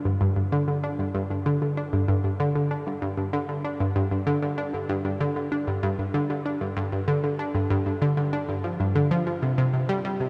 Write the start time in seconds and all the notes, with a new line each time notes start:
0.05 G2
0.21 G2
0.36 G2
0.52 D3
0.68 D3
0.84 D4
0.99 G2
1.15 G2
1.30 G2
1.46 D3
1.62 D3
1.77 D4
1.93 G2
2.08 G2
2.24 G2
2.40 D3
2.56 D3
2.71 D4
2.87 G2
3.02 G2
3.17 G2
3.33 D3
3.49 D3
3.65 D4
3.80 G2
3.96 G2
4.11 G2
4.27 D3
4.42 D3
4.58 D4
4.74 G2
4.89 G2
5.05 G2
5.20 D3
5.36 D3
5.52 D4
5.67 G2
5.83 G2
5.99 G2
6.14 D3
6.30 D3
6.46 D4
6.61 G2
6.77 G2
6.92 G2
7.08 D3
7.24 D3
7.39 D4
7.55 G2
7.70 G2
7.86 G2
8.02 D3
8.17 D3
8.33 D4
8.49 G2
8.64 F3
8.80 G2
8.95 D3
9.11 F3
9.27 F3
9.42 C3
9.58 C3
9.74 C3
9.89 G3
10.05 G3
10.20 C3